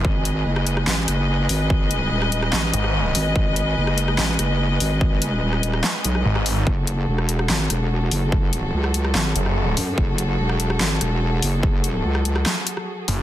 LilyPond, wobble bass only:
\new Staff \with { instrumentName = "Wobble bass" } { \clef bass \time 4/4 \key fis \dorian \tempo 4 = 145 gis,,4 fis,,4 a,,8 fis,,4 gis,,8~ | gis,,4 dis,,4 a,,8 r4 gis,,8 | gis,,4 fis,,4 a,,8 fis,,4 gis,,8~ | gis,,4 dis,,4 r8 b,,8 r4 |
fis,,4 e,,4 gis,,8 e,,4 fis,,8~ | fis,,4 cis,4 gis,,8 r4 fis,8 | fis,,4 e,,4 gis,,8 e,,4 fis,,8~ | fis,,4 cis,4 r2 | }